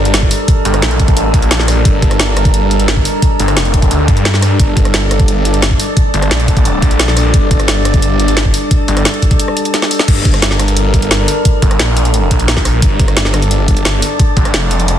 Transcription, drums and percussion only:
0.05 closed hi-hat
0.14 snare, closed hi-hat
0.22 kick
0.31 open hi-hat
0.48 kick, closed hi-hat
0.65 closed hi-hat
0.74 cross-stick, closed hi-hat
0.82 snare, closed hi-hat
0.91 closed hi-hat
1.00 kick, closed hi-hat
1.08 kick, closed hi-hat
1.17 closed hi-hat
1.34 kick, closed hi-hat
1.42 closed hi-hat
1.51 snare, closed hi-hat
1.60 snare
1.68 cross-stick, open hi-hat
1.85 kick, closed hi-hat
2.02 kick, closed hi-hat
2.11 cross-stick, closed hi-hat
2.20 snare, closed hi-hat
2.37 cross-stick, closed hi-hat
2.45 kick, closed hi-hat
2.54 closed hi-hat
2.71 closed hi-hat
2.80 closed hi-hat
2.88 snare, closed hi-hat
2.97 kick
3.05 open hi-hat
3.22 kick, closed hi-hat
3.40 closed hi-hat
3.48 cross-stick, closed hi-hat
3.57 snare, closed hi-hat
3.65 closed hi-hat
3.74 kick, closed hi-hat
3.82 kick, closed hi-hat
3.91 closed hi-hat
4.08 kick, closed hi-hat
4.17 closed hi-hat
4.25 snare, closed hi-hat
4.34 snare
4.42 cross-stick, open hi-hat
4.60 kick, closed hi-hat
4.77 kick, closed hi-hat
4.85 cross-stick, closed hi-hat
4.94 snare, closed hi-hat
5.11 cross-stick, closed hi-hat
5.20 kick, closed hi-hat
5.28 closed hi-hat
5.45 closed hi-hat
5.54 closed hi-hat
5.62 snare, closed hi-hat
5.71 kick
5.80 open hi-hat
5.97 kick, closed hi-hat
6.14 closed hi-hat
6.22 cross-stick, closed hi-hat
6.31 snare, closed hi-hat
6.40 closed hi-hat
6.48 kick, closed hi-hat
6.57 kick, closed hi-hat
6.65 closed hi-hat
6.82 kick, closed hi-hat
6.91 closed hi-hat
7.00 snare, closed hi-hat
7.08 snare
7.17 cross-stick, open hi-hat
7.34 kick, closed hi-hat
7.51 kick, closed hi-hat
7.60 cross-stick, closed hi-hat
7.68 snare, closed hi-hat
7.85 cross-stick, closed hi-hat
7.94 kick, closed hi-hat
8.02 closed hi-hat
8.20 closed hi-hat
8.28 closed hi-hat
8.37 snare, closed hi-hat
8.45 kick
8.54 open hi-hat
8.71 kick, closed hi-hat
8.88 closed hi-hat
8.97 cross-stick, closed hi-hat
9.05 snare, closed hi-hat
9.14 closed hi-hat
9.22 kick, closed hi-hat
9.31 kick, closed hi-hat
9.40 closed hi-hat
9.48 cross-stick
9.57 closed hi-hat
9.65 closed hi-hat
9.74 snare, closed hi-hat
9.82 snare
9.91 open hi-hat
9.99 snare
10.08 kick, closed hi-hat, crash
10.25 kick, closed hi-hat
10.34 cross-stick, closed hi-hat
10.42 snare, closed hi-hat
10.51 snare
10.60 cross-stick, closed hi-hat
10.68 closed hi-hat
10.77 closed hi-hat
10.94 kick, closed hi-hat
11.02 closed hi-hat
11.11 snare, closed hi-hat
11.28 open hi-hat
11.45 kick, closed hi-hat
11.62 kick, closed hi-hat
11.71 cross-stick, closed hi-hat
11.79 snare, closed hi-hat
11.97 closed hi-hat
12.05 closed hi-hat
12.14 closed hi-hat
12.31 kick, closed hi-hat
12.40 closed hi-hat
12.48 snare, closed hi-hat
12.57 kick, snare
12.65 cross-stick, open hi-hat
12.82 kick, closed hi-hat
13.00 kick, closed hi-hat
13.08 cross-stick, closed hi-hat
13.17 snare, closed hi-hat
13.25 snare
13.34 cross-stick, closed hi-hat
13.42 closed hi-hat
13.51 closed hi-hat
13.68 kick, closed hi-hat
13.77 closed hi-hat
13.85 snare, closed hi-hat
14.02 open hi-hat
14.20 kick, closed hi-hat
14.37 kick, closed hi-hat
14.45 cross-stick, closed hi-hat
14.54 snare, closed hi-hat
14.71 closed hi-hat
14.80 closed hi-hat
14.88 closed hi-hat

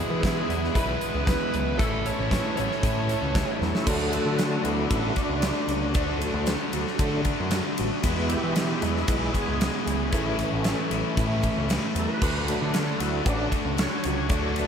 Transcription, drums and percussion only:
0.23 kick, snare, closed hi-hat
0.50 closed hi-hat
0.64 snare
0.75 kick, closed hi-hat
1.01 closed hi-hat
1.27 kick, snare, closed hi-hat
1.54 closed hi-hat
1.79 kick, closed hi-hat
2.06 closed hi-hat
2.31 kick, snare, closed hi-hat
2.57 closed hi-hat
2.71 snare
2.83 kick, closed hi-hat
3.09 closed hi-hat
3.35 kick, snare, closed hi-hat
3.62 snare
3.75 snare
3.87 kick, crash, shaker
4.12 ride, shaker
4.38 snare, ride, shaker
4.65 ride, shaker
4.91 kick, ride, shaker
5.16 kick, ride, shaker
5.42 snare, ride, shaker
5.69 ride, shaker
5.94 kick, ride, shaker
6.22 ride, shaker
6.47 snare, ride, shaker
6.73 ride, shaker
6.87 snare
6.99 kick, ride, shaker
7.25 kick, ride, shaker
7.51 snare, ride, shaker
7.78 ride, shaker
8.04 kick, ride, shaker
8.30 ride, shaker
8.56 snare, ride, shaker
8.82 ride, shaker
8.96 snare
9.08 kick, ride, shaker
9.34 kick, ride, shaker
9.61 snare, ride, shaker
9.87 ride, shaker
10.12 kick, ride, shaker
10.39 ride, shaker
10.64 snare, ride, shaker
10.91 ride, shaker
11.17 kick, ride, shaker
11.43 kick, ride, shaker
11.69 snare, ride, shaker
11.95 ride, shaker
12.22 kick, crash, shaker
12.48 ride, shaker
12.74 snare, ride, shaker
13.00 ride, shaker
13.26 kick, ride, shaker
13.52 kick, ride, shaker
13.78 snare, ride, shaker
14.04 ride, shaker
14.29 kick, ride, shaker
14.56 ride, shaker

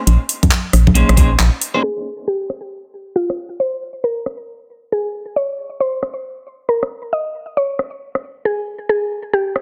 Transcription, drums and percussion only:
0.07 closed hi-hat
0.29 open hi-hat
0.43 kick, closed hi-hat, high conga
0.51 clap, closed hi-hat
0.73 cross-stick, open hi-hat
0.87 kick, high conga
0.95 closed hi-hat
1.09 cross-stick, closed hi-hat
1.17 kick, open hi-hat
1.39 clap, closed hi-hat
1.61 open hi-hat
2.50 cross-stick
3.30 cross-stick
4.26 cross-stick
6.03 cross-stick
6.83 cross-stick
7.79 cross-stick
8.15 cross-stick
9.56 cross-stick

